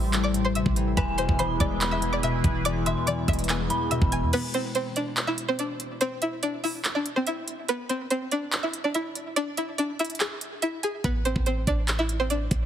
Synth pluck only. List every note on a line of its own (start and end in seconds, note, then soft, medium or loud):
0.00 0.22 E5 medium
0.00 0.22 E6 medium
0.24 0.40 D5 medium
0.24 0.40 D6 medium
0.45 0.53 C5 medium
0.45 0.53 C6 medium
0.55 0.95 E5 medium
0.55 0.95 E6 medium
0.97 1.14 B4 medium
0.97 1.13 B5 loud
1.18 1.34 C5 medium
1.18 1.34 C6 medium
1.39 1.55 C5 medium
1.39 1.55 C6 medium
1.60 1.90 D5 medium
1.60 1.90 D6 medium
1.91 2.08 E5 medium
1.91 2.08 E6 medium
2.13 2.21 D5 medium
2.13 2.21 D6 medium
2.23 2.63 E5 medium
2.23 2.63 E6 medium
2.65 2.82 D5 medium
2.65 2.81 D6 loud
2.86 3.03 E5 medium
2.86 3.02 E6 medium
3.07 3.24 D5 medium
3.07 3.23 D6 medium
3.28 3.45 E5 medium
3.28 3.44 E6 medium
3.49 3.89 G#5 medium
3.49 3.89 G#6 medium
3.91 4.07 E5 medium
3.91 4.07 E6 medium
4.12 4.28 G#5 medium
4.12 4.28 G#6 medium
4.33 4.50 B3 medium
4.33 4.49 B4 loud
4.54 4.71 C4 medium
4.54 4.70 C5 medium
4.75 4.92 C4 medium
4.75 4.91 C5 medium
4.96 5.26 D4 medium
4.96 5.26 D5 medium
5.27 5.44 E4 medium
5.27 5.43 E5 loud
5.49 5.57 C4 medium
5.49 5.56 C5 medium
5.59 5.99 D4 medium
5.59 5.99 D5 medium
6.01 6.17 C4 medium
6.01 6.17 C5 loud
6.22 6.38 E4 medium
6.22 6.38 E5 medium
6.43 6.59 D4 medium
6.43 6.59 D5 medium
6.64 6.94 E4 medium
6.64 6.93 E5 medium
6.95 7.12 D4 medium
6.95 7.11 D5 medium
7.16 7.25 C4 medium
7.16 7.24 C5 medium
7.27 7.67 E4 medium
7.27 7.66 E5 medium
7.69 7.85 B3 medium
7.69 7.85 B4 loud
7.89 8.06 C4 medium
7.89 8.05 C5 medium
8.11 8.27 C4 medium
8.11 8.27 C5 medium
8.32 8.62 D4 medium
8.32 8.61 D5 medium
8.63 8.80 E4 medium
8.63 8.79 E5 medium
8.84 8.93 D4 medium
8.84 8.92 D5 medium
8.95 9.34 E4 medium
8.95 9.34 E5 medium
9.36 9.53 D4 medium
9.36 9.52 D5 loud
9.58 9.74 E4 medium
9.58 9.73 E5 medium
9.78 9.95 D4 medium
9.78 9.94 D5 medium
10.00 10.16 E4 medium
10.00 10.15 E5 medium
10.20 10.60 G#4 medium
10.20 10.60 G#5 medium
10.62 10.79 E4 medium
10.62 10.78 E5 medium
10.83 11.00 G#4 medium
10.83 10.99 G#5 medium
11.04 11.21 B3 medium
11.04 11.20 B4 loud
11.25 11.42 C4 medium
11.25 11.41 C5 medium
11.47 11.63 C4 medium
11.47 11.62 C5 medium
11.68 11.97 D4 medium
11.68 11.97 D5 medium
11.99 12.15 E4 medium
11.99 12.15 E5 medium
12.20 12.28 C4 medium
12.20 12.28 C5 medium
12.30 12.66 D4 medium
12.30 12.66 D5 medium